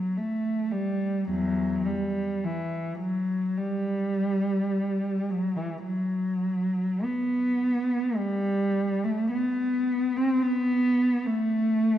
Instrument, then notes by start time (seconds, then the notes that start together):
cello
Already playing: F#3
0.17 A3
0.72 G3
1.29 E2 F#3
1.86 G3
2.45 E3
2.99 F#3
3.57 G3
5.30 F#3
5.56 E3
5.83 F#3
7.04 B3
8.19 G3
9.04 A3
9.32 B3
10.17 C4
10.43 B3
11.26 A3